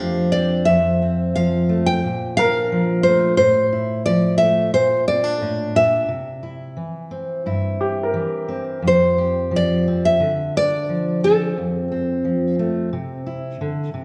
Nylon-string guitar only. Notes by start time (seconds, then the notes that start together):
Already playing: F5
0.32 D5
0.65 E5
1.36 F5
1.86 G5
2.37 F5
3.03 C5
3.37 C5
4.06 D5
4.38 E5
4.74 C5
5.08 D5
5.76 E5
8.88 C5
9.56 D5
10.05 E5
10.57 D5
11.24 A4